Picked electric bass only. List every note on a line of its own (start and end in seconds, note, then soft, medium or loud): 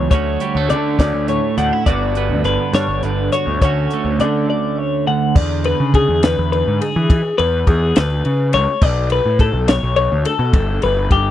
0.00 0.11 C#2 medium
0.11 0.36 D2 loud
0.55 0.71 D2 medium
0.70 0.95 D3 medium
0.99 1.11 D2 loud
1.14 1.39 D2 medium
1.58 1.70 D2 loud
1.87 2.31 G1 medium
2.29 2.42 D2 medium
2.44 2.57 G1 medium
2.73 2.86 G2 medium
2.88 3.01 G1 medium
3.03 3.28 G1 medium
3.47 3.60 D2 medium
3.61 3.86 D2 loud
4.05 4.21 D2 medium
4.19 4.44 D3 medium
5.35 5.73 E2 loud
5.80 6.05 C#3 medium
6.09 6.33 E2 medium
6.38 6.63 E2 medium
6.68 6.79 G#2 medium
6.96 7.20 E3 medium
7.39 7.63 E2 medium
7.67 7.92 E2 loud
7.97 8.21 D2 loud
8.26 8.55 C#3 medium
8.54 8.66 C#2 medium
8.82 9.19 B1 loud
9.26 9.50 A2 medium
9.53 9.78 B1 medium
9.83 10.07 B1 medium
10.12 10.24 D2 medium
10.39 10.52 B2 medium
10.53 10.78 G1 loud
10.83 11.08 G1 medium
11.11 11.31 G1 loud